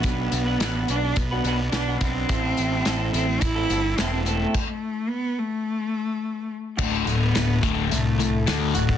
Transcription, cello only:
\new Staff \with { instrumentName = "Cello" } { \time 4/4 \key d \mixolydian \tempo 4 = 107 b4. d'8 b4 d'8 c'8~ | c'4. c'8 e'4 c'8 a8~ | a16 a8. b8 a2 r8 | a8. b8. a8 a4. r8 | }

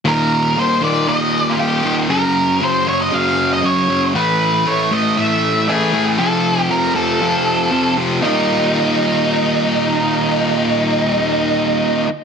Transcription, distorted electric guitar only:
\new Staff \with { instrumentName = "Distorted electric guitar" } { \clef bass \time 4/4 \key ees \lydian \tempo 4 = 118 <ees, bes, ees>4 <ees, bes, ees>8 <ees, bes, ees>8 <ees, bes, ees>4 <ees, bes, ees>8 <ees, bes, ees>8 | <ges, des ges>4 <ges, des ges>8 <ges, des ges>8 <ges, des ges>4 <ges, des ges>8 <ges, des ges>8 | <a, e a>4 <a, e a>8 <a, e a>8 <a, e a>4 <a, e a>8 <a, e a>8 | <f, c f>4 <f, c f>8 <f, c f>8 <f, c f>4 <f, c f>8 <f, c f>8 |
<ees, bes, ees g bes ees'>1~ | <ees, bes, ees g bes ees'>1 | }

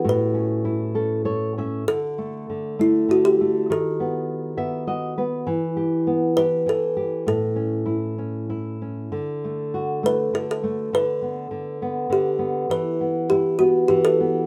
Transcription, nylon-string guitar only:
\new Staff \with { instrumentName = "Nylon-string guitar" } { \time 3/4 \key d \major \tempo 4 = 100 a,8 cis'8 e'8 <cis' a'>8 <a' cis''>8 <cis' e''>8 | d8 a8 d8 a8 d8 a8 | dis8 b4 <b e''>8 <fis' dis''>8 <b b'>8 | e8 g'8 b8 g'8 e8 g'8 |
a,8 cis'8 e'8 cis'8 e'8 cis'8 | d8 a8 fis'8 a8 d8 a8 | d8 b8 d8 b8 d8 b8 | e8 b8 e'8 b8 e8 b8 | }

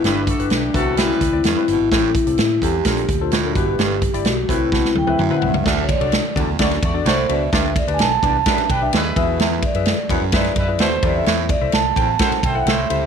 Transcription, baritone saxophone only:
\new Staff \with { instrumentName = "Baritone saxophone" } { \clef bass \time 4/4 \key d \mixolydian \tempo 4 = 128 g,8 r4 e,8 fis,8 r8 g,8 b,8 | a,8 r4 e,8 f,8 r8 a,8 b,8 | g,8 r4 a,8 b,8 r8 fis,8 g,8 | d,8 r4 e,8 fis,8 r8 a,8 b,8 |
g,8 r4 e,8 fis,8 r8 g,8 b,8 | e,8 r4 fis,8 gis,8 r8 b,8 c8 | a,8 r4 e,8 fis,8 r8 a,8 c8 | }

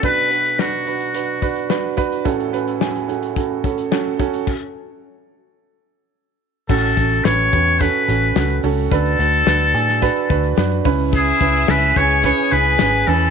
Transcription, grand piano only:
<<
  \new Staff \with { instrumentName = "Grand piano" } { \time 4/4 \key a \major \tempo 4 = 108 <d' fis' b'>8 <d' fis'>8 <d' fis' b'>8 <d' fis' b'>8 <d' fis' b'>8 <d' fis' b'>8 <d' fis' b'>8 <d' fis' b'>8 | <cis' fis' a'>8 <cis' fis' b'>8 <cis' fis' gis'>8 <cis' fis' a'>8 <cis' fis' a'>8 <cis' fis' a'>8 <cis' fis' a'>8 <cis' fis' a'>8 | r1 | <cis' fis' a'>8 <cis' fis' a'>8 <cis' fis' b'>8 <cis' fis' b'>8 <cis' fis' a'>8 <cis' fis' a'>8 <cis' fis' a'>8 <cis' fis' a'>8 |
<d' fis' b'>8 <d' fis' b'>8 <d' fis' b'>8 <d' fis' gis'>8 <d' fis' b'>8 <d' fis' b'>8 <d' fis' b'>8 <cis' e' b'>8~ | <cis' e' b'>8 <cis' e' b'>8 <cis' e' gis'>8 <cis' e' b'>8 <cis' e' b'>8 <cis' e' b'>8 <cis' e' b'>8 <cis' e' gis'>8 | }
  \new Staff \with { instrumentName = "Grand piano" } { \clef bass \time 4/4 \key a \major <b,, b,>1 | <a,, a,>1 | r1 | a,4. r2 r8 |
d4. r2 cis8~ | cis4 r2 r8 e8 | }
>>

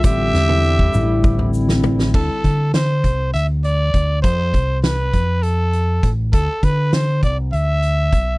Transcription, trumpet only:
\new Staff \with { instrumentName = "Trumpet" } { \time 7/8 \key d \dorian \tempo 4 = 100 e''2~ e''8 r4 | a'4 c''4 e''8 d''4 | c''4 b'4 a'4 r8 | a'8 b'8 c''8 d''8 e''4. | }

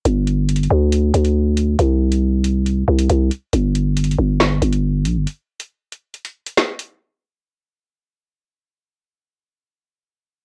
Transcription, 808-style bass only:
\new Staff \with { instrumentName = "808-style bass" } { \clef bass \time 4/4 \key g \minor \tempo 4 = 138 g,,4. d,4 d,4. | c,2~ c,8 c,8 c,8 r8 | g,,4. g,,4 g,,4 bes,,16 g,,16 | r1 |
r1 | r1 | }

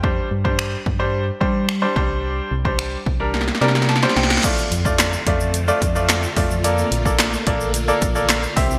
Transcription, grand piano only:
\new Staff \with { instrumentName = "Grand piano" } { \time 4/4 \key f \major \tempo 4 = 109 << { r1 | r2 r8 d''8 a''8 g''8 | r1 | r1 | } \\ { <g d' c''>8 r16 <g d' c''>8 r8 <g d' c''>8 r16 <g d' c''>8 r16 <g d' c''>16 <g d' c''>8~ | <g d' c''>8 r16 <g d' c''>8 r8 <g d' bes'>8 r16 <g d' bes'>8 r16 <g d' c''>8 r16 | <a f' d''>8 r16 <a f' d''>8 r16 <a f' d''>8 r16 <a f' d''>16 r16 <a f' d''>8 r16 <a f' d''>16 r16 | <bes a' d''>8 r16 <bes a' d''>8 r16 <bes a' d''>8 r16 <bes a' d''>16 r16 <bes a' d''>8 r16 <c' g' e''>8 | } >> }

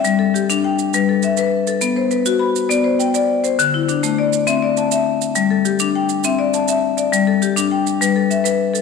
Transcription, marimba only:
\new Staff \with { instrumentName = "Marimba" } { \time 12/8 \key g \major \tempo 4. = 136 << { <e'' g''>8 a'8 g'4 g''4 b'8 a'8 e''4. a'8~ | a'8 c''8 b'4 b''4 d''8 c''8 g''4. c''8~ | c''8 e'8 d'4 d''4 e''8 d''8 a''4. r8 | r8 a'8 g'4 g''4 e''8 d''8 a''4. d''8~ |
d''8 a'8 g'4 g''4 b'8 a'8 e''4. a'8 | } \\ { g4 r8 d'4 r8 g4 r8 b'4 r8 | b4 r8 fis'4 r8 b4 r8 d''4 r8 | d4 r8 a4 r8 c'4 r8 e''4 r8 | g4 r8 d'4 r8 c'4 r8 e''4 r8 |
g4 r8 d'4 r8 g4 r8 b'4 r8 | } >> }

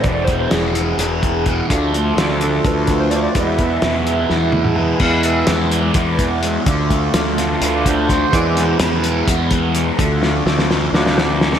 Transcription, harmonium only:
\new Staff \with { instrumentName = "Harmonium" } { \time 7/8 \tempo 4 = 127 << { <e gis b e'>2.~ <e gis b e'>8 | <f a d' f'>2.~ <f a d' f'>8 | <e gis b e'>2.~ <e gis b e'>8 | f''8 e''4 d''4. r8 |
r2 b'8 c''4 | d''8 c''8 b'4 b'8 r4 | r2 c''8 d''4 | } \\ { r2. r8 | r2. r8 | r2. r8 | <gis b e'>4. r2 |
<a d' f'>2~ <a d' f'>8 <a d' f'>8 r8 | <gis b e'>8 r2. | <a d' f'>4. r8 <a d' f'>8 r4 | } >> }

